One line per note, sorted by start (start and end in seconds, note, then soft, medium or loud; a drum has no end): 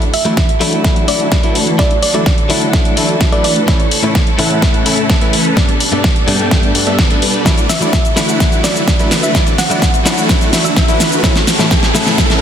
0.00 3.64 D3 medium
0.00 3.64 F#3 medium
0.00 1.77 E4 medium
0.00 11.20 A4 medium
0.00 closed hi-hat soft
0.14 0.80 E5 medium
0.14 open hi-hat medium
0.25 0.44 E3 medium
0.25 0.38 F#3 medium
0.25 0.38 A3 medium
0.25 0.44 A3 medium
0.25 0.44 D4 medium
0.25 0.38 D4 medium
0.25 0.39 E4 medium
0.25 0.44 F#4 medium
0.25 0.44 D5 medium
0.25 closed hi-hat soft
0.37 kick loud
0.37 snare soft
0.37 closed hi-hat medium
0.49 closed hi-hat soft
0.60 1.05 E3 medium
0.60 1.05 F#3 medium
0.60 1.05 A3 medium
0.60 1.05 D4 medium
0.60 1.06 E4 loud
0.60 1.05 F#4 medium
0.60 1.05 F#5 medium
0.60 open hi-hat loud
0.73 closed hi-hat soft
0.84 kick loud
0.84 snare soft
0.84 closed hi-hat medium
0.96 closed hi-hat soft
1.07 1.27 E3 medium
1.07 1.40 F#3 medium
1.07 1.41 A3 medium
1.07 1.27 A3 medium
1.07 1.27 D4 medium
1.07 1.41 D4 medium
1.07 1.41 E4 medium
1.07 1.27 F#4 medium
1.07 1.22 D5 medium
1.07 1.27 E5 medium
1.07 open hi-hat loud
1.20 closed hi-hat soft
1.32 kick loud
1.32 snare soft
1.32 closed hi-hat medium
1.43 1.76 E3 medium
1.43 1.56 F#3 medium
1.43 1.56 A3 medium
1.43 1.76 A3 medium
1.43 1.76 D4 medium
1.43 1.56 D4 medium
1.43 1.57 E4 medium
1.43 1.76 F#4 medium
1.43 1.76 B4 loud
1.43 closed hi-hat soft
1.55 open hi-hat loud
1.67 closed hi-hat soft
1.78 1.98 E3 medium
1.78 1.91 F#3 medium
1.78 1.92 A3 medium
1.78 3.66 D4 medium
1.78 1.92 D4 medium
1.78 1.92 E4 medium
1.78 1.93 D5 medium
1.78 kick loud
1.78 snare medium
1.78 closed hi-hat medium
1.91 closed hi-hat soft
2.02 2.10 D5 medium
2.02 open hi-hat loud
2.14 2.33 E3 medium
2.14 2.27 F#3 medium
2.14 2.27 A3 medium
2.14 2.33 A3 medium
2.14 2.27 D4 medium
2.14 2.33 D4 medium
2.14 2.28 E4 medium
2.14 2.33 F#4 medium
2.14 2.22 D5 medium
2.14 2.33 D5 medium
2.14 closed hi-hat soft
2.26 kick loud
2.26 snare medium
2.26 closed hi-hat medium
2.38 closed hi-hat soft
2.49 2.94 E3 medium
2.49 2.94 F#3 loud
2.49 2.94 A3 medium
2.49 2.94 D4 medium
2.49 2.94 E4 loud
2.49 2.94 F#4 medium
2.49 2.94 F#5 loud
2.49 open hi-hat loud
2.62 closed hi-hat soft
2.73 kick loud
2.73 snare medium
2.73 closed hi-hat medium
2.85 closed hi-hat soft
2.96 3.16 E3 medium
2.96 3.29 F#3 medium
2.96 3.16 A3 medium
2.96 3.29 A3 medium
2.96 3.16 D4 medium
2.96 3.30 D4 medium
2.96 3.30 E4 medium
2.96 3.16 F#4 medium
2.96 3.16 E5 medium
2.96 open hi-hat loud
3.09 closed hi-hat soft
3.21 kick loud
3.21 snare medium
3.21 closed hi-hat medium
3.32 3.65 E3 medium
3.32 3.45 F#3 medium
3.32 3.65 A3 medium
3.32 3.45 A3 medium
3.32 3.45 D4 medium
3.32 3.65 D4 medium
3.32 3.46 E4 medium
3.32 3.65 F#4 medium
3.32 3.65 B4 loud
3.32 3.40 D5 medium
3.32 closed hi-hat soft
3.44 3.52 D5 medium
3.44 open hi-hat loud
3.56 closed hi-hat soft
3.67 3.80 A2 medium
3.67 5.55 C#3 medium
3.67 3.87 E3 loud
3.67 3.81 E3 medium
3.67 3.81 A3 medium
3.67 5.55 A3 medium
3.67 3.87 A3 medium
3.67 3.87 C#4 medium
3.67 3.81 C#4 medium
3.67 5.55 E4 medium
3.67 3.81 E4 medium
3.67 3.87 A4 medium
3.67 3.87 C#5 loud
3.67 kick loud
3.67 snare medium
3.67 closed hi-hat medium
3.80 closed hi-hat soft
3.91 open hi-hat loud
4.03 4.16 A2 medium
4.03 4.16 E3 medium
4.03 4.22 E3 medium
4.03 4.16 A3 medium
4.03 4.22 A3 medium
4.03 4.22 C#4 medium
4.03 4.16 C#4 medium
4.03 4.16 E4 medium
4.03 4.22 A4 medium
4.03 4.22 C#5 medium
4.03 closed hi-hat soft
4.15 kick loud
4.15 snare medium
4.15 closed hi-hat medium
4.27 closed hi-hat soft
4.38 4.83 A2 loud
4.38 4.83 E3 medium
4.38 4.83 A3 medium
4.38 4.83 C#4 medium
4.38 4.83 E4 loud
4.38 4.83 A4 medium
4.38 4.83 F#5 loud
4.38 open hi-hat loud
4.50 closed hi-hat soft
4.62 kick loud
4.62 snare medium
4.62 closed hi-hat medium
4.74 closed hi-hat soft
4.85 5.18 A2 medium
4.85 5.05 E3 medium
4.85 5.18 E3 medium
4.85 5.19 A3 medium
4.85 5.05 A3 medium
4.85 5.05 C#4 medium
4.85 5.19 C#4 medium
4.85 5.19 E4 medium
4.85 5.05 A4 medium
4.85 5.05 E5 medium
4.85 open hi-hat loud
4.98 closed hi-hat soft
5.10 kick loud
5.10 snare medium
5.10 closed hi-hat medium
5.20 5.34 A2 medium
5.20 5.54 E3 medium
5.20 5.34 E3 medium
5.20 5.34 A3 medium
5.20 5.54 A3 medium
5.20 5.54 C#4 medium
5.20 5.34 C#4 medium
5.20 5.35 E4 medium
5.20 5.54 A4 medium
5.20 5.54 B4 loud
5.20 closed hi-hat soft
5.33 open hi-hat loud
5.45 closed hi-hat soft
5.56 5.69 G2 medium
5.56 7.44 B2 medium
5.56 5.70 G3 medium
5.56 7.44 G3 medium
5.56 5.76 G3 medium
5.56 5.70 A3 medium
5.56 5.76 B3 medium
5.56 5.70 B3 medium
5.56 7.44 D4 medium
5.56 5.76 D4 medium
5.56 5.70 D4 medium
5.56 5.76 D5 loud
5.56 kick loud
5.56 snare medium
5.56 closed hi-hat medium
5.69 closed hi-hat soft
5.80 open hi-hat loud
5.91 6.05 G2 medium
5.91 6.11 G3 medium
5.91 6.05 G3 medium
5.91 6.05 A3 medium
5.91 6.11 B3 medium
5.91 6.05 B3 medium
5.91 6.11 D4 medium
5.91 6.05 D4 medium
5.91 6.11 A4 medium
5.91 6.11 D5 medium
5.91 closed hi-hat soft
6.04 kick loud
6.04 snare medium
6.04 closed hi-hat medium
6.16 closed hi-hat soft
6.27 6.72 G2 loud
6.27 6.72 G3 medium
6.27 6.72 A3 medium
6.27 6.72 B3 medium
6.27 6.72 D4 medium
6.27 6.72 D4 loud
6.27 6.72 A4 medium
6.27 6.72 G5 loud
6.27 open hi-hat loud
6.39 closed hi-hat soft
6.51 kick loud
6.51 snare medium
6.51 closed hi-hat medium
6.63 closed hi-hat soft
6.74 7.07 G2 medium
6.74 7.07 G3 medium
6.74 7.08 A3 medium
6.74 7.08 B3 medium
6.74 7.08 D4 medium
6.74 open hi-hat loud
6.87 6.97 G3 medium
6.87 6.97 B3 medium
6.87 6.97 D4 medium
6.87 6.97 A4 medium
6.87 6.97 E5 loud
6.87 closed hi-hat soft
6.99 7.43 G3 medium
6.99 7.43 B3 medium
6.99 7.43 B4 medium
6.99 kick loud
6.99 snare medium
6.99 closed hi-hat medium
7.10 7.23 G2 medium
7.10 7.23 G3 medium
7.10 7.23 A3 medium
7.10 7.23 B3 medium
7.10 7.24 D4 medium
7.10 closed hi-hat soft
7.22 open hi-hat loud
7.34 closed hi-hat soft
7.45 11.20 D3 medium
7.45 7.65 E3 loud
7.45 7.58 F#3 medium
7.45 11.20 F#3 medium
7.45 7.59 A3 medium
7.45 7.59 D4 medium
7.45 9.33 E4 medium
7.45 7.59 E4 loud
7.45 kick loud
7.45 snare medium
7.45 closed hi-hat medium
7.45 riser medium
7.45 shaker soft
7.58 closed hi-hat soft
7.58 shaker soft
7.69 8.36 E5 medium
7.69 snare medium
7.69 open hi-hat loud
7.69 shaker medium
7.80 8.00 E3 medium
7.80 7.94 F#3 medium
7.80 8.00 A3 medium
7.80 7.94 A3 medium
7.80 7.94 D4 medium
7.80 8.00 D4 medium
7.80 7.94 E4 medium
7.80 8.00 F#4 medium
7.80 8.00 D5 medium
7.80 closed hi-hat soft
7.80 shaker soft
7.93 kick loud
7.93 snare medium
7.93 closed hi-hat medium
7.93 shaker soft
8.05 closed hi-hat soft
8.05 shaker soft
8.16 8.61 E3 medium
8.16 8.61 F#3 loud
8.16 8.61 A3 medium
8.16 8.61 D4 medium
8.16 8.61 E4 loud
8.16 8.61 F#4 medium
8.16 8.61 F#5 loud
8.16 snare medium
8.16 open hi-hat loud
8.16 shaker medium
8.28 closed hi-hat soft
8.28 shaker soft
8.40 kick loud
8.40 snare medium
8.40 closed hi-hat medium
8.40 shaker soft
8.52 closed hi-hat soft
8.52 shaker soft
8.63 8.83 E3 medium
8.63 8.96 F#3 medium
8.63 8.96 A3 medium
8.63 8.83 A3 medium
8.63 8.83 D4 medium
8.63 8.97 D4 medium
8.63 8.97 E4 medium
8.63 8.83 F#4 medium
8.63 8.78 D5 medium
8.63 8.83 E5 medium
8.63 snare medium
8.63 open hi-hat loud
8.63 shaker medium
8.76 closed hi-hat soft
8.76 shaker soft
8.88 kick loud
8.88 snare medium
8.88 closed hi-hat medium
8.88 shaker soft
8.99 9.32 E3 loud
8.99 9.12 F#3 medium
8.99 9.32 A3 medium
8.99 9.12 A3 medium
8.99 9.32 D4 medium
8.99 9.12 D4 medium
8.99 9.13 E4 medium
8.99 9.32 F#4 medium
8.99 9.32 B4 loud
8.99 closed hi-hat soft
8.99 shaker soft
9.11 snare medium
9.11 open hi-hat loud
9.11 shaker medium
9.23 9.37 E5 medium
9.23 closed hi-hat soft
9.23 shaker soft
9.34 9.54 E3 loud
9.34 9.47 F#3 medium
9.34 9.48 A3 medium
9.34 9.54 D4 medium
9.34 9.48 D4 medium
9.34 9.48 E4 loud
9.34 11.22 F#4 medium
9.34 9.54 D5 loud
9.34 kick loud
9.34 snare medium
9.34 closed hi-hat medium
9.34 shaker soft
9.47 closed hi-hat soft
9.47 shaker soft
9.58 9.66 F#5 medium
9.58 snare medium
9.58 open hi-hat loud
9.58 shaker medium
9.70 9.89 E3 medium
9.70 9.83 F#3 medium
9.70 9.83 A3 medium
9.70 9.89 A3 medium
9.70 9.89 D4 medium
9.70 9.83 D4 medium
9.70 9.83 E4 medium
9.70 9.89 F#4 medium
9.70 9.89 D5 medium
9.70 9.78 F#5 medium
9.70 closed hi-hat soft
9.70 shaker soft
9.82 kick loud
9.82 snare medium
9.82 closed hi-hat medium
9.82 shaker soft
9.94 closed hi-hat soft
9.94 shaker soft
10.05 10.50 E3 medium
10.05 10.50 F#3 medium
10.05 10.50 A3 medium
10.05 10.50 D4 medium
10.05 10.50 E4 loud
10.05 10.50 F#4 medium
10.05 10.50 F#5 loud
10.05 snare medium
10.05 open hi-hat loud
10.05 shaker medium
10.17 closed hi-hat soft
10.17 shaker soft
10.29 kick loud
10.29 snare medium
10.29 closed hi-hat medium
10.29 shaker soft
10.41 closed hi-hat soft
10.41 shaker soft
10.52 10.72 E3 medium
10.52 10.85 F#3 medium
10.52 10.72 A3 medium
10.52 10.85 A3 medium
10.52 10.72 D4 medium
10.52 10.86 D4 medium
10.52 10.86 E4 medium
10.52 10.72 F#4 medium
10.52 10.72 E5 medium
10.52 snare medium
10.52 open hi-hat loud
10.52 shaker medium
10.65 11.28 E5 medium
10.65 shaker soft
10.76 kick loud
10.76 snare medium
10.76 closed hi-hat medium
10.76 shaker soft
10.88 11.21 E3 medium
10.88 11.01 F#3 medium
10.88 11.01 A3 medium
10.88 11.21 A3 medium
10.88 11.21 D4 medium
10.88 11.01 D4 medium
10.88 11.02 E4 medium
10.88 11.21 F#4 medium
10.88 11.21 B4 loud
10.88 closed hi-hat soft
10.88 shaker soft
11.00 snare medium
11.00 open hi-hat loud
11.00 shaker medium
11.12 closed hi-hat soft
11.12 shaker soft
11.23 11.36 A2 medium
11.23 12.41 C#3 medium
11.23 11.37 E3 medium
11.23 11.43 E3 loud
11.23 11.37 A3 medium
11.23 11.43 A3 medium
11.23 12.41 A3 medium
11.23 11.43 C#4 medium
11.23 11.37 C#4 medium
11.23 12.41 E4 medium
11.23 11.37 E4 loud
11.23 12.41 A4 medium
11.23 11.43 C#5 loud
11.23 kick loud
11.23 snare medium
11.23 closed hi-hat medium
11.23 shaker soft
11.36 snare medium
11.36 closed hi-hat soft
11.36 shaker soft
11.47 snare medium
11.47 open hi-hat loud
11.47 shaker medium
11.59 11.72 A2 medium
11.59 11.78 E3 medium
11.59 11.72 E3 medium
11.59 11.72 A3 medium
11.59 11.78 A3 medium
11.59 11.78 C#4 medium
11.59 11.72 C#4 medium
11.59 11.72 E4 medium
11.59 11.78 A4 medium
11.59 11.78 C#5 medium
11.59 snare medium
11.59 closed hi-hat soft
11.59 shaker soft
11.71 kick loud
11.71 snare medium
11.71 closed hi-hat medium
11.71 shaker soft
11.83 snare medium
11.83 closed hi-hat soft
11.83 shaker soft
11.94 12.39 A2 loud
11.94 12.39 E3 medium
11.94 12.39 A3 medium
11.94 12.39 C#4 medium
11.94 12.39 E4 loud
11.94 12.39 A4 medium
11.94 12.39 F#5 loud
11.94 snare loud
11.94 open hi-hat loud
11.94 shaker medium
12.06 snare medium
12.06 closed hi-hat soft
12.06 shaker soft
12.18 kick loud
12.18 snare loud
12.18 closed hi-hat medium
12.18 shaker soft
12.30 snare medium
12.30 closed hi-hat soft
12.30 shaker soft